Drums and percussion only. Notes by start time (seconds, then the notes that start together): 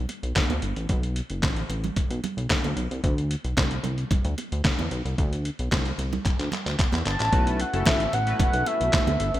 0.09 closed hi-hat, muted conga
0.23 closed hi-hat
0.36 kick, snare, clap, closed hi-hat, high conga
0.50 closed hi-hat, high conga
0.62 closed hi-hat
0.76 closed hi-hat
0.89 kick, closed hi-hat
1.03 closed hi-hat
1.16 closed hi-hat
1.30 closed hi-hat
1.43 kick, snare, clap, closed hi-hat, high conga
1.56 closed hi-hat
1.70 closed hi-hat, muted conga
1.84 closed hi-hat, low conga
1.96 kick, closed hi-hat, muted conga
2.11 closed hi-hat
2.24 closed hi-hat, muted conga, low conga
2.38 closed hi-hat
2.50 kick, snare, clap, closed hi-hat, high conga
2.64 closed hi-hat, high conga
2.77 closed hi-hat
2.91 closed hi-hat
3.04 kick, closed hi-hat
3.18 closed hi-hat
3.31 closed hi-hat
3.44 closed hi-hat
3.57 kick, snare, clap, closed hi-hat, high conga
3.71 closed hi-hat
3.84 closed hi-hat, low conga
3.98 closed hi-hat
4.11 kick, closed hi-hat, muted conga, low conga
4.25 closed hi-hat
4.38 closed hi-hat, muted conga
4.52 closed hi-hat
4.64 kick, snare, clap, closed hi-hat, high conga
4.79 closed hi-hat, high conga
4.91 closed hi-hat
5.06 closed hi-hat
5.18 kick, closed hi-hat
5.33 closed hi-hat
5.45 closed hi-hat
5.59 closed hi-hat
5.72 kick, snare, clap, closed hi-hat, high conga
5.86 closed hi-hat
5.99 closed hi-hat, muted conga
6.13 closed hi-hat, low conga
6.25 kick, clap, closed hi-hat, muted conga
6.39 clap, closed hi-hat
6.52 clap, closed hi-hat, muted conga, low conga
6.67 clap, closed hi-hat
6.79 kick, clap, closed hi-hat, high conga
6.92 clap, closed hi-hat, high conga
7.06 clap, closed hi-hat
7.20 clap, closed hi-hat
7.33 kick, closed hi-hat
7.47 closed hi-hat
7.60 closed hi-hat
7.74 closed hi-hat
7.86 kick, snare, clap, closed hi-hat, high conga
8.00 closed hi-hat
8.13 closed hi-hat, muted conga
8.27 closed hi-hat
8.40 kick, closed hi-hat, muted conga, low conga
8.53 closed hi-hat
8.66 closed hi-hat, muted conga
8.81 closed hi-hat
8.93 kick, snare, clap, closed hi-hat, high conga
9.07 closed hi-hat, high conga
9.20 closed hi-hat
9.34 closed hi-hat